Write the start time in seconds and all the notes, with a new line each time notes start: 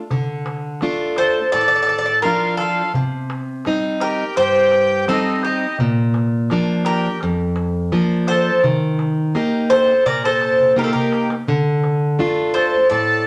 0.10 D3, darbuka dum
0.28 darbuka tek
0.46 darbuka tek
0.81 A3 D4 F4, darbuka tek
1.16 A4 C5, darbuka tek
1.52 A2 A4 D5, darbuka tek
1.61 D5
1.68 D5
1.76 D5
1.82 D5
1.87 D5, darbuka tek
1.98 D5
2.06 D5
2.22 F3 D4 F4 A#4, darbuka tek
2.26 F4
2.57 F4 A4, darbuka tek
2.94 C3, darbuka dum
3.12 darbuka tek
3.30 darbuka tek
3.65 G3 C4 D#4, darbuka tek
4.00 G4 A#4, darbuka tek
4.36 G2 G4 C5, darbuka tek
4.72 darbuka tek
5.08 G3 C4 D#4 A4, darbuka tek
5.43 D#4 G4, darbuka tek
5.79 A#2, darbuka dum
5.97 darbuka tek
6.14 darbuka tek
6.50 F3 A#3 D4, darbuka tek
6.85 G4 A#4, darbuka tek
7.21 F2, darbuka tek
7.56 darbuka tek
7.92 F3 A#3 D4, darbuka tek
8.27 A4 C5, darbuka tek
8.64 D#3, darbuka dum
8.81 darbuka tek
8.99 darbuka tek
9.35 A#3 D#4 G4, darbuka tek
9.53 darbuka tek
9.70 A4 C5, darbuka tek
9.88 darbuka tek
10.06 A#2 A#4 D5, darbuka tek, darbuka dum
10.24 A4 C5
10.41 darbuka tek
10.59 darbuka dum
10.76 A#3 D#4 G4 A#4, darbuka dum
10.84 F4 A4
10.92 G4 A#4, darbuka dum
11.13 darbuka tek
11.30 darbuka tek
11.48 D3, darbuka dum
11.84 darbuka tek
12.19 A3 D4 F4, darbuka tek
12.54 A4 C5, darbuka tek
12.90 A2 A4 D5, darbuka tek